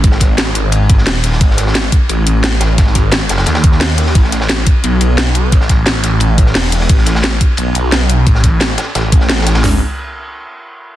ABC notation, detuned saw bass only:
X:1
M:4/4
L:1/8
Q:1/4=175
K:Alyd
V:1 name="Detuned saw bass" clef=bass
G,,,3 G,,,2 G,,, D,,,2 | G,,,3 z A,,, A,,,3 | G,,,3 F,,, D,,4 | A,,,3 z B,,, B,,,3 |
A,,,3 A,,,2 A,,, E,,,2 | A,,,3 z B,,, B,,,3 | A,,,3 z A,,,4 | G,,, z6 z |]